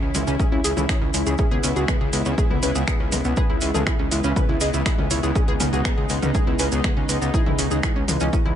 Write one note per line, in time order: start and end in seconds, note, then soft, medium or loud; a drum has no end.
0.00 0.11 C#2 medium
0.00 1.35 E3 medium
0.00 1.35 C#4 medium
0.00 0.07 C#4 medium
0.00 5.31 E4 medium
0.15 0.24 C#2 loud
0.15 0.22 G#3 medium
0.15 0.22 C#4 medium
0.15 open hi-hat loud
0.15 mid tom medium
0.15 maracas medium
0.27 0.36 C#2 loud
0.27 0.35 C#4 medium
0.27 0.34 C#4 loud
0.27 maracas soft
0.40 0.47 C#4 medium
0.40 0.47 G#4 medium
0.40 kick loud
0.40 maracas soft
0.52 0.61 C#2 medium
0.52 0.60 C#4 medium
0.52 0.59 E4 medium
0.64 0.73 C#2 loud
0.64 0.69 G#4 medium
0.64 0.72 G#4 medium
0.64 open hi-hat loud
0.64 maracas loud
0.77 0.86 C#2 medium
0.77 0.84 C#4 medium
0.77 0.84 E4 medium
0.77 mid tom medium
0.77 maracas medium
0.89 0.97 C#4 medium
0.89 0.96 G#4 medium
0.89 finger snap loud
0.89 kick loud
0.89 open hi-hat medium
0.89 maracas soft
1.02 1.10 C#2 medium
1.02 1.06 C#4 medium
1.14 1.23 C#2 loud
1.14 1.21 G#3 medium
1.14 1.22 C#4 medium
1.14 open hi-hat loud
1.14 maracas medium
1.26 1.35 C#2 medium
1.26 1.34 C#4 medium
1.26 1.34 G#4 medium
1.26 maracas medium
1.38 8.55 G#3 medium
1.38 8.55 B3 medium
1.38 1.46 C#4 medium
1.38 1.46 G#4 loud
1.38 kick loud
1.38 maracas soft
1.51 1.60 C#2 medium
1.51 1.59 B3 medium
1.51 1.58 G#4 loud
1.63 1.73 C#2 loud
1.63 1.71 B3 medium
1.63 1.71 C#4 medium
1.63 open hi-hat loud
1.63 maracas medium
1.76 1.85 C#2 medium
1.76 1.83 F#4 medium
1.76 1.83 G#4 medium
1.76 maracas soft
1.88 1.96 B3 medium
1.88 1.96 G#4 medium
1.88 finger snap loud
1.88 kick loud
1.88 mid tom loud
1.88 maracas soft
2.01 2.10 C#2 medium
2.01 2.11 G#4 medium
2.13 2.22 C#2 loud
2.13 2.20 G#3 medium
2.13 2.21 B3 medium
2.13 open hi-hat loud
2.13 maracas medium
2.25 2.35 C#2 medium
2.25 2.33 B3 medium
2.25 2.36 C#4 medium
2.25 maracas soft
2.38 2.45 G#4 medium
2.38 2.46 G#4 medium
2.38 kick loud
2.38 maracas soft
2.50 2.59 C#2 medium
2.50 2.58 B3 medium
2.50 2.58 E4 medium
2.50 mid tom medium
2.63 2.72 C#2 loud
2.63 2.70 C#4 medium
2.63 2.70 B4 medium
2.63 open hi-hat loud
2.63 maracas medium
2.75 2.84 C#2 medium
2.75 2.83 B3 medium
2.75 2.82 G#4 medium
2.75 maracas medium
2.88 2.95 B3 medium
2.88 2.95 G#4 medium
2.88 finger snap loud
2.88 kick loud
2.88 maracas soft
3.00 3.09 C#2 medium
3.00 3.04 C#4 medium
3.12 3.21 C#2 loud
3.12 3.20 G#3 medium
3.12 3.20 B3 medium
3.12 open hi-hat loud
3.12 mid tom medium
3.12 maracas medium
3.24 3.34 C#2 medium
3.24 3.32 B3 medium
3.24 3.35 B3 medium
3.24 maracas medium
3.37 3.48 G#4 loud
3.37 3.45 B4 loud
3.37 kick loud
3.37 maracas soft
3.50 3.58 C#2 medium
3.50 3.57 E4 medium
3.61 3.71 C#2 loud
3.61 3.69 C#4 medium
3.61 3.69 E4 medium
3.61 open hi-hat loud
3.61 maracas medium
3.74 3.83 C#2 medium
3.74 3.82 G#4 medium
3.74 3.82 A4 medium
3.74 mid tom medium
3.74 maracas soft
3.87 3.94 E4 medium
3.87 3.94 G#4 medium
3.87 finger snap loud
3.87 kick loud
3.87 maracas soft
3.99 4.08 C#2 medium
3.99 4.04 C#4 medium
4.11 4.21 C#2 loud
4.11 4.19 G#3 medium
4.11 4.19 E4 medium
4.11 open hi-hat loud
4.11 maracas medium
4.24 4.33 C#2 loud
4.24 4.31 C#4 loud
4.24 4.31 E4 medium
4.24 maracas medium
4.36 4.44 C#4 medium
4.36 4.44 B4 medium
4.36 kick loud
4.36 mid tom loud
4.36 maracas soft
4.49 4.58 C#2 medium
4.49 4.56 E4 medium
4.61 4.70 C#2 loud
4.61 4.65 G#4 medium
4.61 4.69 D#5 medium
4.61 open hi-hat loud
4.61 maracas medium
4.74 4.82 C#2 medium
4.74 4.81 E4 medium
4.74 maracas medium
4.86 4.94 E4 medium
4.86 4.93 G#4 medium
4.86 finger snap loud
4.86 kick loud
4.86 open hi-hat medium
4.86 maracas soft
4.98 5.07 C#2 medium
4.98 5.03 C#4 medium
4.98 mid tom loud
5.11 5.20 C#2 loud
5.11 5.18 E4 medium
5.11 5.15 C#5 medium
5.11 open hi-hat loud
5.11 maracas medium
5.23 5.32 C#2 medium
5.23 5.31 E4 medium
5.23 5.30 G#4 medium
5.23 maracas soft
5.35 5.43 C#4 medium
5.35 8.55 D#4 medium
5.35 5.43 G#4 loud
5.35 kick loud
5.35 maracas soft
5.48 5.57 C#2 medium
5.48 5.55 B3 medium
5.48 5.55 G#4 loud
5.60 5.69 C#2 loud
5.60 5.68 B3 medium
5.60 5.67 C#4 medium
5.60 open hi-hat loud
5.60 mid tom medium
5.60 maracas medium
5.73 5.82 C#2 medium
5.73 5.80 F#4 medium
5.73 5.80 G#4 medium
5.73 maracas soft
5.85 5.93 B3 medium
5.85 5.92 G#4 medium
5.85 finger snap loud
5.85 kick loud
5.85 maracas soft
5.98 6.06 C#2 medium
5.98 6.08 G#4 medium
6.09 6.19 C#2 loud
6.09 6.17 G#3 medium
6.09 6.17 B3 medium
6.09 open hi-hat loud
6.09 maracas medium
6.22 6.31 C#2 loud
6.22 6.30 B3 medium
6.22 6.33 C#4 medium
6.22 mid tom loud
6.22 maracas medium
6.34 6.42 G#4 medium
6.34 kick loud
6.34 maracas soft
6.47 6.56 C#2 medium
6.47 6.55 B3 medium
6.47 6.54 E4 medium
6.59 6.69 C#2 loud
6.59 6.67 C#4 medium
6.59 6.67 B4 loud
6.59 open hi-hat loud
6.59 maracas medium
6.72 6.81 C#2 loud
6.72 6.79 B3 medium
6.72 6.79 G#4 medium
6.72 maracas soft
6.84 6.92 B3 medium
6.84 6.91 G#4 medium
6.84 finger snap loud
6.84 kick loud
6.84 mid tom loud
6.84 maracas soft
6.97 7.06 C#2 medium
6.97 7.01 C#4 medium
7.09 7.18 C#2 loud
7.09 7.16 G#3 medium
7.09 7.17 B3 medium
7.09 open hi-hat loud
7.09 maracas medium
7.22 7.30 C#2 medium
7.22 7.32 B3 medium
7.22 7.29 B3 medium
7.22 maracas medium
7.34 7.41 E4 loud
7.34 7.45 G#4 loud
7.34 kick loud
7.34 maracas soft
7.46 7.55 C#2 medium
7.46 7.54 E3 medium
7.46 7.53 E4 medium
7.46 mid tom loud
7.59 7.68 C#2 loud
7.59 7.66 E3 medium
7.59 7.66 C#4 medium
7.59 open hi-hat loud
7.59 maracas medium
7.71 7.80 C#2 loud
7.71 7.79 D#4 medium
7.71 7.78 G#4 medium
7.71 maracas medium
7.83 7.91 E3 medium
7.83 7.91 G#4 medium
7.83 finger snap loud
7.83 kick loud
7.83 maracas soft
7.96 8.05 C#2 medium
7.96 8.00 C#4 medium
8.08 8.17 C#2 loud
8.08 8.16 E3 medium
8.08 8.15 G#3 medium
8.08 open hi-hat loud
8.08 mid tom loud
8.08 maracas medium
8.20 8.30 C#2 loud
8.20 8.28 E3 medium
8.20 8.28 C#4 loud
8.20 maracas medium
8.33 8.40 C#4 medium
8.33 8.41 E4 medium
8.33 kick loud
8.33 maracas soft
8.45 8.54 C#2 medium
8.45 8.53 E3 medium
8.45 8.53 E4 medium